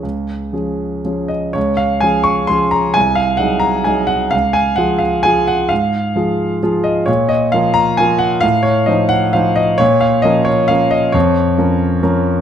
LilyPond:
\new Staff \with { instrumentName = "Grand piano" } { \time 3/4 \key des \major \tempo 4 = 131 << { des''2~ des''8 ees''8 | des''8 f''8 aes''8 des'''8 c'''8 bes''8 | aes''8 f''8 ges''8 bes''8 aes''8 ges''8 | f''8 aes''8 ges''8 f''8 aes''8 ges''8 |
f''2 r8 ees''8 | des''8 ees''8 f''8 bes''8 aes''8 ges''8 | f''8 des''8 ees''8 ges''8 f''8 ees''8 | des''8 f''8 ees''8 des''8 f''8 ees''8 |
des''2 r4 | } \\ { des,4 <f des' aes'>4 <f des' aes'>4 | des,4 <f des' aes'>4 <f des' aes'>4 | c,4 <ges ees' aes'>4 <ges ees' aes'>4 | des,4 <f f' aes'>4 <f f' aes'>4 |
aes,4 <f f' aes'>4 <f f' aes'>4 | bes,4 <f f' bes'>4 <f f' bes'>4 | a,4 <f ees' c''>4 <f ees' c''>4 | bes,4 <f des' bes'>4 <f des' bes'>4 |
f,4 <f des' bes'>4 <f des' bes'>4 | } >> }